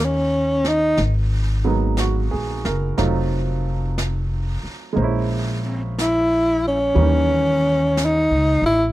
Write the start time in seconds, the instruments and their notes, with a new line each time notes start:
Already playing: upright bass D#2, grand piano D#3 G3 A#3 C#4 D#4
0.05 tenor saxophone C#4
0.64 tenor saxophone D#4, snare
0.97 upright bass G#1, brush sweep, snare
1.64 grand piano F#3 G#3 A#3 B3 D#4
1.97 grand piano F#4, brush sweep, snare, hi-hat pedal
2.31 upright bass A#1, grand piano G#4
2.65 upright bass F#1, grand piano A#4, snare
2.98 upright bass F1, grand piano F#3 A3 C4 D#4 F4, brush sweep, snare
3.98 brush sweep, snare, hi-hat pedal
4.63 muted upright bass stroke
4.93 upright bass A#1, grand piano G#3 A#3
4.98 grand piano C#4 C5, brush sweep
5.04 grand piano E4
5.66 tenor saxophone C4
5.99 tenor saxophone E4, brush sweep, snare, hi-hat pedal
6.68 tenor saxophone C#4
6.94 upright bass D#2, grand piano E3 G3 A#3 C#4, brush sweep
6.99 grand piano D#3
7.97 brush sweep, snare, hi-hat pedal
8.05 tenor saxophone D#4
8.31 upright bass C#2
8.62 upright bass A1
8.66 tenor saxophone E4